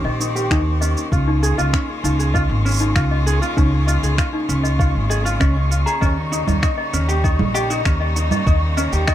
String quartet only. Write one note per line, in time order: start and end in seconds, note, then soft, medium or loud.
0.00 1.08 D#3 medium
0.00 5.98 A#3 medium
0.00 1.10 C4 medium
0.00 1.08 G4 medium
1.12 9.15 C#3 medium
1.12 5.98 G#3 medium
1.12 5.98 F4 medium
6.01 9.15 G3 medium
6.01 9.15 A#3 medium
6.01 9.15 D#4 medium